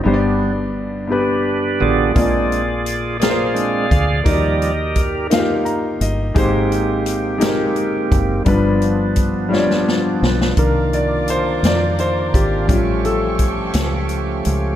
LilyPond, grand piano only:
\new Staff \with { instrumentName = "Grand piano" } { \time 6/8 \key c \minor \tempo 4. = 57 << { r2. | r2. | r2 bes''8 ees''8 | r2. |
r2. | bes'8 d''8 c''8 d''8 c''8 g'8 | eis'8 a'4. r4 | } \\ { <g, b d' g' c'' d''>4. <b d' g' b'>4. | <bes, bes f' aes' d''>4. <bes f' aes' bes' c''>4. | <ees bes ees' fis' g' d''>4. <bes ees' f' g' f''>4. | <aes, aes ees' g' c''>4. <aes ees' g' bes'>4. |
<g, g d' f' b'>4. <g d' f' des'' d''>4. | <ees f bes d'>2. | <eis g cis'>2. | } >> }